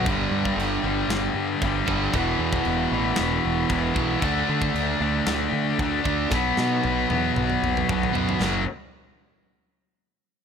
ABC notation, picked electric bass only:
X:1
M:4/4
L:1/8
Q:1/4=115
K:F#phr
V:1 name="Picked electric bass" clef=bass
G,,, G,, G,,, G,,, G,,, G,, G,,, G,,, | E,,, E,, E,,, A,,, E,,, E,,, E,,, B,,, | D,, D, D,, D,, D,, D, D,, D,, | B,,, B,, B,,, E,, B,,, B,,, B,,, F,, |
F,,, z6 z |]